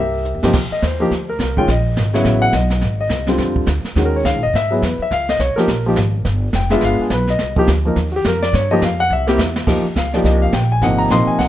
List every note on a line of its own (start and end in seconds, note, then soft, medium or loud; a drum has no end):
0.00 0.32 C2 medium
0.00 0.43 G4 medium
0.00 0.51 A#4 medium
0.00 0.40 E5 medium
0.25 hi-hat pedal medium
0.34 0.43 E2 medium
0.43 0.53 G2 medium
0.43 0.53 C3 medium
0.43 0.53 F3 medium
0.43 0.53 A#3 medium
0.43 0.54 D#4 medium
0.43 0.54 G4 medium
0.43 snare medium
0.53 brush sweep soft
0.53 kick medium
0.53 snare soft
0.53 crash medium
0.71 0.83 D#5 medium
0.71 muted upright bass stroke soft
0.82 1.10 D#2 medium
0.82 1.25 C5 medium
0.82 kick soft
0.82 snare medium
0.82 hi-hat pedal medium
1.00 1.10 F3 medium
1.00 1.10 A#3 medium
1.00 1.10 D#4 medium
1.00 1.11 G4 medium
1.11 1.38 D2 medium
1.11 brush sweep soft
1.11 kick soft
1.11 snare soft
1.29 1.56 A#4 medium
1.39 1.67 C2 medium
1.39 kick soft
1.39 snare medium
1.39 hi-hat pedal medium
1.57 1.67 D#3 medium
1.57 1.67 G#3 medium
1.57 1.67 C#4 medium
1.57 1.68 F4 medium
1.57 1.68 G5 medium
1.57 kick soft
1.68 1.95 A#1 medium
1.68 2.12 D#5 medium
1.68 brush sweep medium
1.68 kick soft
1.68 snare soft
1.97 2.24 G#1 medium
1.97 kick soft
1.97 snare medium
1.97 hi-hat pedal medium
2.13 2.51 C#3 medium
2.13 2.52 F#3 medium
2.13 2.52 B3 medium
2.13 2.52 E4 medium
2.13 2.41 C#5 medium
2.13 snare soft
2.25 2.52 A1 medium
2.25 brush sweep soft
2.25 kick soft
2.25 snare soft
2.42 2.53 F#5 loud
2.53 2.80 B1 medium
2.53 2.97 D#5 medium
2.53 kick soft
2.53 snare medium
2.53 hi-hat pedal medium
2.70 snare soft
2.81 3.09 G#1 medium
2.81 brush sweep soft
2.81 kick soft
2.81 snare soft
3.01 3.27 D#5 medium
3.09 3.38 C2 medium
3.09 kick soft
3.09 snare medium
3.09 hi-hat pedal medium
3.27 3.65 D3 medium
3.27 3.66 G3 medium
3.27 3.66 C4 medium
3.27 3.66 F4 medium
3.27 snare soft
3.38 3.66 F2 medium
3.38 brush sweep soft
3.38 kick soft
3.38 snare soft
3.56 kick medium
3.67 3.84 D2 medium
3.67 kick soft
3.67 snare medium
3.67 hi-hat pedal medium
3.84 muted upright bass stroke soft
3.84 snare soft
3.95 4.24 D#2 medium
3.95 4.39 D#3 medium
3.95 4.39 G#3 medium
3.95 4.40 C#4 medium
3.95 4.06 F#4 medium
3.95 brush sweep soft
3.95 kick soft
3.95 snare soft
4.05 4.15 A#4 medium
4.16 4.25 C#5 medium
4.25 4.34 C#2 medium
4.25 4.42 F5 medium
4.25 kick soft
4.25 snare medium
4.25 hi-hat pedal medium
4.34 4.43 A#1 medium
4.43 4.53 F#1 medium
4.43 4.53 D#5 medium
4.54 4.81 G#2 medium
4.54 4.72 E5 medium
4.54 brush sweep soft
4.54 kick soft
4.54 snare soft
4.71 4.81 F#3 medium
4.71 4.81 B3 medium
4.71 4.82 E4 medium
4.71 4.82 G#4 medium
4.82 4.98 E2 medium
4.82 5.00 B4 medium
4.82 kick soft
4.82 snare medium
4.82 hi-hat pedal medium
4.99 5.12 E5 medium
4.99 muted upright bass stroke soft
5.11 5.38 C#2 medium
5.11 5.28 F5 loud
5.11 brush sweep soft
5.11 kick soft
5.11 snare soft
5.29 5.40 D#5 loud
5.29 snare soft
5.39 5.55 C2 medium
5.39 5.57 C#5 medium
5.39 kick soft
5.39 snare medium
5.39 hi-hat pedal medium
5.56 5.67 F3 medium
5.56 5.67 A#3 medium
5.56 5.68 D#4 medium
5.56 5.68 G4 medium
5.56 5.93 A#4 medium
5.56 muted upright bass stroke soft
5.56 snare soft
5.68 5.96 A#1 medium
5.68 brush sweep soft
5.68 kick soft
5.68 snare soft
5.86 5.96 F3 medium
5.86 5.96 A#3 medium
5.86 5.97 D#4 medium
5.86 5.97 G4 medium
5.96 6.24 G#1 medium
5.96 kick soft
5.96 snare medium
5.96 hi-hat pedal medium
6.25 6.53 G1 medium
6.25 brush sweep medium
6.25 kick soft
6.25 snare medium
6.53 6.81 F1 medium
6.53 6.71 G5 medium
6.53 kick soft
6.53 snare medium
6.53 hi-hat pedal medium
6.70 7.08 G#3 medium
6.70 7.09 B3 medium
6.70 7.09 D4 medium
6.70 7.09 F4 medium
6.70 6.82 E5 medium
6.70 snare soft
6.81 6.98 G1 medium
6.81 7.00 F5 medium
6.81 brush sweep soft
6.81 kick soft
6.81 snare medium
6.99 7.11 G#4 medium
6.99 muted upright bass stroke soft
7.10 7.38 B1 medium
7.10 7.29 B4 medium
7.10 kick soft
7.10 snare medium
7.10 hi-hat pedal medium
7.27 7.56 D#5 medium
7.27 snare soft
7.39 7.67 C2 medium
7.39 brush sweep medium
7.39 kick soft
7.39 snare medium
7.56 7.67 F3 medium
7.56 7.67 A#3 medium
7.56 7.67 D#4 medium
7.56 7.68 G4 medium
7.56 kick medium
7.67 7.95 D2 medium
7.67 kick soft
7.67 snare medium
7.67 hi-hat pedal medium
7.85 7.95 F3 medium
7.85 7.96 A#3 medium
7.85 7.96 D#4 medium
7.85 7.96 A#4 medium
7.96 8.24 D#2 medium
7.96 brush sweep medium
7.96 kick soft
7.96 snare soft
8.16 8.26 G4 medium
8.24 8.53 F2 loud
8.24 8.43 A#4 medium
8.24 kick soft
8.24 snare medium
8.24 hi-hat pedal medium
8.43 8.53 D5 loud
8.43 snare soft
8.53 8.81 G2 medium
8.53 8.71 C#5 medium
8.53 brush sweep medium
8.53 kick soft
8.53 snare soft
8.71 8.81 F3 medium
8.71 8.81 A#3 medium
8.71 8.82 D#4 medium
8.71 8.82 G4 medium
8.71 8.82 D#5 medium
8.82 9.10 F2 medium
8.82 9.00 F5 medium
8.82 kick soft
8.82 snare medium
8.82 hi-hat pedal medium
9.00 9.11 F#5 loud
9.10 9.37 C2 medium
9.10 9.65 E5 medium
9.27 9.37 A#3 medium
9.27 9.38 C4 medium
9.27 9.38 E4 medium
9.27 9.38 G4 medium
9.27 snare medium
9.38 9.66 E2 medium
9.38 snare medium
9.38 hi-hat pedal medium
9.56 snare medium
9.67 9.83 F2 medium
9.67 9.83 F3 medium
9.67 9.83 A#3 medium
9.67 9.83 D#4 medium
9.67 9.83 G4 medium
9.67 brush sweep soft
9.67 kick medium
9.67 snare soft
9.67 crash medium
9.83 muted upright bass stroke soft
9.96 10.24 C#2 medium
9.96 10.13 F5 medium
9.96 kick soft
9.96 snare medium
9.96 hi-hat pedal soft
10.13 10.51 F3 medium
10.13 10.52 A#3 medium
10.13 10.52 D#4 medium
10.13 10.52 G4 medium
10.13 10.24 D5 medium
10.13 snare soft
10.24 10.52 C2 medium
10.24 10.42 D#5 medium
10.24 brush sweep soft
10.24 kick soft
10.24 snare soft
10.42 10.53 F5 medium
10.53 10.80 A#1 medium
10.53 10.70 G5 medium
10.53 kick soft
10.53 snare medium
10.53 hi-hat pedal medium
10.72 10.82 G#5 medium
10.81 11.09 G#1 medium
10.81 11.09 C3 medium
10.81 11.10 F3 medium
10.81 11.10 A#3 medium
10.81 11.10 D#4 medium
10.81 10.99 F#5 medium
10.81 brush sweep soft
10.81 kick soft
10.81 snare soft
10.98 11.09 A#5 medium
11.10 11.26 A#1 medium
11.10 11.48 C3 medium
11.10 11.48 F3 medium
11.10 11.48 A#3 medium
11.10 11.48 D#4 medium
11.10 11.28 C6 loud
11.10 kick soft
11.10 snare medium
11.10 hi-hat pedal medium
11.27 11.38 G#5 medium
11.27 muted upright bass stroke soft
11.39 11.48 C2 medium
11.39 11.48 F#5 medium
11.39 brush sweep medium
11.39 kick soft
11.39 snare soft